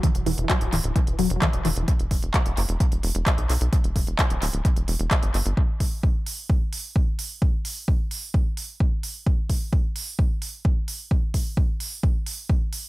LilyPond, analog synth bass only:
\new Staff \with { instrumentName = "Analog synth bass" } { \clef bass \time 4/4 \key e \minor \tempo 4 = 130 r16 e,,16 e,,16 e,,16 r16 d,,16 d,,16 d,,16 r16 e,,16 e,,16 e,,16 r16 e,,16 e,,16 e,,16 | r16 e,,16 e,,16 e,,16 r16 e,,16 fis,,16 e,,16 r16 e,,16 e,,16 e,,16 r16 b,,16 b,,16 b,,16 | r16 e,,16 e,,16 e,,16 r16 d,,16 d,,16 d,,16 r16 e,,16 e,,16 e,,16 r16 g,,16 g,,16 g,,16 | r1 |
r1 | r1 | r1 | }